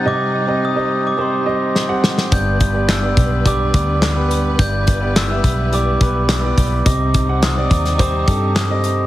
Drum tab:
HH |----------------|x-x-x-x-x-x-x-x-|x-x-x-x-x-x-x-x-|x-x-x-xxx-x-x-x-|
CP |----------------|----x-------x---|----x-------x---|----x-------x---|
SD |------------o-oo|----o-------o---|----o-------o---|----o--o----o---|
BD |----------------|o-o---o-o-o-----|o-o---o---o---o-|o-o---o-o-o-----|